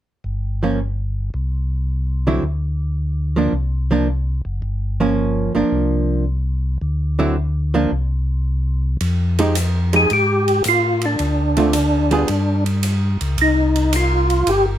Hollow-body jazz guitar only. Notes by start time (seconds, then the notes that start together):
0.63 F3 A#3 C#4
2.27 D3 F#3 C4 E4
3.36 F3 A#3 D4
3.91 F3 A#3 D4
5.00 F3 A#3 C#4
5.55 F3 A#3 D4
7.19 D3 F#3 C4 E4
7.74 F3 A#3 D4
9.39 F3 G#3 D#4 G4
9.93 F3 G#3 D#4 G4
11.57 D3 A3 C4 F4
12.11 G3 B3 F4 G#4